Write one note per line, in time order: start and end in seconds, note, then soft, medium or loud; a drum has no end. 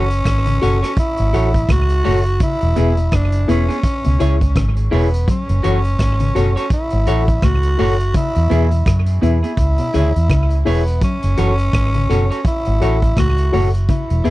0.00 0.22 F#1 medium
0.00 0.98 C#4 loud
0.11 closed hi-hat medium
0.25 0.58 G#1 medium
0.25 kick loud
0.25 cross-stick loud
0.25 closed hi-hat medium
0.46 0.57 C#3 medium
0.46 closed hi-hat soft
0.61 0.81 F#1 medium
0.61 0.76 B2 medium
0.61 0.79 F#4 medium
0.61 0.76 F#4 medium
0.61 0.79 A4 medium
0.61 0.77 A4 medium
0.61 0.79 C#5 medium
0.61 0.77 C#5 medium
0.61 0.79 F#5 medium
0.61 closed hi-hat medium
0.82 0.91 F#4 medium
0.82 0.91 A4 medium
0.82 0.91 C#5 medium
0.82 cross-stick medium
0.82 closed hi-hat medium
0.97 1.73 E4 loud
0.97 kick loud
0.97 closed hi-hat medium
1.17 1.32 G#1 medium
1.17 1.25 C#5 soft
1.17 1.25 F#5 soft
1.17 closed hi-hat medium
1.33 1.66 A1 medium
1.33 1.48 F#4 medium
1.33 1.51 F#4 medium
1.33 1.48 A4 medium
1.33 1.51 A4 medium
1.33 1.51 C#5 medium
1.33 1.48 C#5 medium
1.33 1.51 F#5 loud
1.33 closed hi-hat medium
1.54 kick medium
1.54 closed hi-hat soft
1.69 2.01 C#2 medium
1.69 1.83 A2 medium
1.69 2.42 F#4 loud
1.69 kick loud
1.69 cross-stick loud
1.69 closed hi-hat loud
1.89 closed hi-hat medium
2.04 2.38 F#1 medium
2.04 2.19 A2 medium
2.04 2.19 F#4 medium
2.04 2.22 F#4 medium
2.04 2.20 A4 medium
2.04 2.22 A4 medium
2.04 2.20 C#5 medium
2.04 2.23 C#5 medium
2.04 2.23 F#5 medium
2.04 open hi-hat medium
2.26 closed hi-hat medium
2.40 2.55 C#3 medium
2.40 3.16 E4 loud
2.40 kick loud
2.40 closed hi-hat medium
2.61 2.75 E1 loud
2.61 closed hi-hat soft
2.76 3.09 E1 medium
2.76 2.91 B2 medium
2.76 2.91 B3 medium
2.76 2.94 E4 medium
2.76 2.92 E4 medium
2.76 2.94 G#4 medium
2.76 2.92 G#4 medium
2.76 2.94 B4 medium
2.76 2.94 E5 loud
2.76 closed hi-hat medium
2.97 3.07 B2 medium
2.97 closed hi-hat soft
3.12 3.45 F#1 loud
3.12 3.27 C#3 medium
3.12 3.49 D4 loud
3.12 kick loud
3.12 cross-stick loud
3.12 closed hi-hat medium
3.32 closed hi-hat medium
3.48 3.67 E1 medium
3.48 3.62 B2 medium
3.48 3.63 B3 medium
3.48 4.63 C#4 loud
3.48 3.65 E4 medium
3.48 3.63 E4 medium
3.48 3.66 G#4 medium
3.48 3.64 G#4 medium
3.48 3.66 B4 medium
3.48 3.66 E5 loud
3.48 closed hi-hat medium
3.68 3.78 B3 medium
3.68 3.77 E4 medium
3.68 3.77 G#4 medium
3.68 closed hi-hat soft
3.83 kick loud
3.83 closed hi-hat medium
4.04 4.19 C#2 medium
4.04 4.15 B2 medium
4.04 4.11 C#5 soft
4.04 4.11 E5 soft
4.04 closed hi-hat medium
4.19 4.53 C#2 medium
4.19 4.34 C#3 medium
4.19 4.34 E4 medium
4.19 4.37 E4 loud
4.19 4.35 G#4 medium
4.19 4.38 G#4 medium
4.19 4.35 C#5 medium
4.19 4.38 C#5 medium
4.19 4.38 E5 loud
4.19 closed hi-hat medium
4.41 kick medium
4.41 closed hi-hat medium
4.56 4.88 G#1 loud
4.56 4.70 C#3 medium
4.56 kick loud
4.56 cross-stick loud
4.56 closed hi-hat medium
4.77 closed hi-hat medium
4.91 5.24 E1 medium
4.91 5.06 B2 medium
4.91 5.26 B3 medium
4.91 5.06 E4 loud
4.91 5.09 E4 medium
4.91 5.09 G#4 medium
4.91 5.07 G#4 medium
4.91 5.09 C#5 medium
4.91 5.07 C#5 loud
4.91 5.10 E5 medium
4.91 open hi-hat medium
5.14 closed hi-hat medium
5.28 5.42 F#3 medium
5.28 6.69 C#4 loud
5.28 kick loud
5.28 closed hi-hat medium
5.49 5.62 F#1 loud
5.49 closed hi-hat medium
5.63 5.96 F#1 medium
5.63 5.78 E3 medium
5.63 5.78 F#4 medium
5.63 5.81 F#4 medium
5.63 5.81 A4 medium
5.63 5.79 A4 medium
5.63 5.79 C#5 loud
5.63 5.82 C#5 medium
5.63 5.82 F#5 loud
5.63 closed hi-hat medium
5.84 closed hi-hat medium
5.99 6.32 G#1 medium
5.99 kick loud
5.99 cross-stick loud
5.99 closed hi-hat medium
6.20 6.31 C#3 medium
6.20 closed hi-hat medium
6.35 6.54 F#1 medium
6.35 6.50 B2 medium
6.35 6.50 F#4 medium
6.35 6.53 F#4 medium
6.35 6.53 A4 medium
6.35 6.50 A4 medium
6.35 6.53 C#5 medium
6.35 6.51 C#5 medium
6.35 6.53 F#5 loud
6.35 closed hi-hat medium
6.56 6.65 F#4 medium
6.56 6.65 A4 medium
6.56 6.64 C#5 medium
6.56 closed hi-hat medium
6.70 7.46 E4 loud
6.70 kick loud
6.70 closed hi-hat medium
6.90 7.06 G#1 medium
6.90 6.98 C#5 soft
6.90 6.98 F#5 soft
6.90 closed hi-hat medium
7.06 7.40 A1 medium
7.06 7.22 F#4 medium
7.06 7.24 F#4 medium
7.06 7.22 A4 medium
7.06 7.25 A4 medium
7.06 7.22 C#5 loud
7.06 7.25 C#5 medium
7.06 7.25 F#5 loud
7.06 closed hi-hat medium
7.28 kick medium
7.28 closed hi-hat soft
7.42 7.75 C#2 loud
7.42 7.57 A2 medium
7.42 8.15 F#4 loud
7.42 kick loud
7.42 cross-stick loud
7.42 closed hi-hat medium
7.63 closed hi-hat medium
7.78 8.11 F#1 medium
7.78 7.93 A2 medium
7.78 7.96 F#4 medium
7.78 7.94 F#4 medium
7.78 7.96 A4 medium
7.78 7.94 A4 medium
7.78 7.96 C#5 medium
7.78 7.94 C#5 loud
7.78 7.97 F#5 medium
7.78 open hi-hat medium
8.00 closed hi-hat medium
8.14 8.29 C#3 medium
8.14 8.94 E4 loud
8.14 kick loud
8.14 closed hi-hat medium
8.36 8.49 E2 medium
8.36 closed hi-hat medium
8.50 8.83 E2 medium
8.50 8.65 B2 medium
8.50 8.65 B3 medium
8.50 8.68 E4 loud
8.50 8.65 E4 loud
8.50 8.68 G#4 medium
8.50 8.66 G#4 loud
8.50 8.68 B4 medium
8.50 8.68 E5 loud
8.50 closed hi-hat medium
8.71 8.81 B2 medium
8.71 closed hi-hat medium
8.86 9.19 F#2 medium
8.86 9.01 C#3 medium
8.86 kick loud
8.86 cross-stick loud
8.86 closed hi-hat medium
9.06 closed hi-hat medium
9.21 9.41 E2 medium
9.21 9.36 B2 medium
9.21 9.37 B3 medium
9.21 9.40 E4 medium
9.21 9.37 E4 medium
9.21 10.63 E4 loud
9.21 9.40 G#4 medium
9.21 9.37 G#4 medium
9.21 9.40 B4 medium
9.21 9.40 E5 loud
9.21 closed hi-hat medium
9.43 9.52 B3 soft
9.43 9.52 E4 medium
9.43 9.51 G#4 medium
9.43 closed hi-hat soft
9.57 9.77 C#2 loud
9.57 kick loud
9.57 closed hi-hat medium
9.78 9.89 B2 medium
9.78 9.85 C#5 soft
9.78 9.85 E5 soft
9.78 closed hi-hat medium
9.94 10.13 D2 medium
9.94 10.08 C#3 medium
9.94 10.09 E4 medium
9.94 10.11 E4 medium
9.94 10.09 G#4 medium
9.94 10.12 G#4 medium
9.94 10.12 C#5 medium
9.94 10.09 C#5 medium
9.94 10.12 E5 loud
9.94 closed hi-hat medium
10.16 10.29 E2 medium
10.16 closed hi-hat soft
10.30 10.62 C#2 medium
10.30 10.44 C#3 medium
10.30 kick loud
10.30 cross-stick loud
10.30 closed hi-hat medium
10.50 closed hi-hat soft
10.65 10.99 E1 medium
10.65 10.80 B2 medium
10.65 11.01 B3 medium
10.65 10.83 E4 medium
10.65 10.81 E4 medium
10.65 10.83 G#4 medium
10.65 10.81 G#4 medium
10.65 10.83 C#5 medium
10.65 10.81 C#5 medium
10.65 10.84 E5 loud
10.65 open hi-hat medium
10.87 closed hi-hat medium
11.01 11.16 F#3 medium
11.01 12.42 C#4 loud
11.01 kick loud
11.01 closed hi-hat medium
11.23 11.37 F#1 medium
11.23 closed hi-hat medium
11.37 11.70 F#1 medium
11.37 11.52 E3 medium
11.37 11.52 F#4 medium
11.37 11.55 F#4 medium
11.37 11.55 A4 medium
11.37 11.53 A4 medium
11.37 11.55 C#5 medium
11.37 11.53 C#5 medium
11.37 11.56 F#5 loud
11.37 closed hi-hat medium
11.58 closed hi-hat soft
11.73 12.06 G#1 medium
11.73 kick loud
11.73 cross-stick loud
11.73 closed hi-hat medium
11.94 12.05 C#3 medium
11.94 closed hi-hat medium
12.09 12.29 F#1 medium
12.09 12.24 B2 medium
12.09 12.27 F#4 medium
12.09 12.24 F#4 medium
12.09 12.27 A4 medium
12.09 12.25 A4 medium
12.09 12.27 C#5 medium
12.09 12.25 C#5 medium
12.09 12.27 F#5 loud
12.09 closed hi-hat medium
12.31 12.39 F#4 medium
12.31 12.39 A4 medium
12.31 12.39 C#5 medium
12.31 closed hi-hat soft
12.45 13.14 E4 loud
12.45 kick loud
12.45 closed hi-hat medium
12.65 12.80 G#1 medium
12.65 12.72 C#5 soft
12.65 12.72 F#5 soft
12.65 closed hi-hat soft
12.81 13.14 A1 medium
12.81 12.98 F#4 medium
12.81 12.96 F#4 medium
12.81 12.98 A4 medium
12.81 12.96 A4 medium
12.81 12.99 C#5 medium
12.81 12.97 C#5 medium
12.81 12.99 F#5 loud
12.81 closed hi-hat medium
13.02 kick medium
13.02 closed hi-hat soft
13.17 13.49 C#2 medium
13.17 13.32 A2 medium
13.17 13.61 F#4 loud
13.17 kick loud
13.17 cross-stick loud
13.17 closed hi-hat loud
13.38 closed hi-hat medium
13.52 13.85 F#1 medium
13.52 13.68 A2 medium
13.52 13.70 F#4 medium
13.52 13.68 F#4 medium
13.52 13.70 A4 medium
13.52 13.68 A4 medium
13.52 13.70 C#5 medium
13.52 13.68 C#5 medium
13.52 13.71 F#5 medium
13.52 open hi-hat medium
13.75 closed hi-hat medium
13.89 14.03 C#3 medium
13.89 14.30 E4 loud
13.89 kick loud
13.89 closed hi-hat medium
14.10 14.24 E1 medium
14.10 closed hi-hat medium
14.24 14.30 E1 medium
14.24 14.30 B2 medium
14.24 14.30 B3 medium
14.24 14.30 E4 loud
14.24 14.30 E4 medium
14.24 14.30 G#4 medium
14.24 14.30 B4 medium
14.24 14.30 E5 loud
14.24 closed hi-hat medium